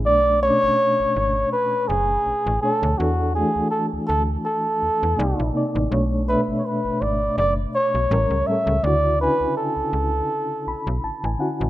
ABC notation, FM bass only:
X:1
M:4/4
L:1/16
Q:"Swing 16ths" 1/4=82
K:Bdor
V:1 name="FM bass" clef=bass
B,,,3 G,,, z G,,, G,,,2 z2 F,,,2 A,,, A,,, z D,, | E,,3 D,, z D,, D,,2 z2 E,, E,, =C,, _B,,, z A,,, | B,,,3 G,,, z G,,, G,,,2 F,,,2 z B,,, A,,, C,, z C,, | D,,3 C,, z C,, C,,2 z2 B,,, B,,, A,,, A,,, z A,,, |]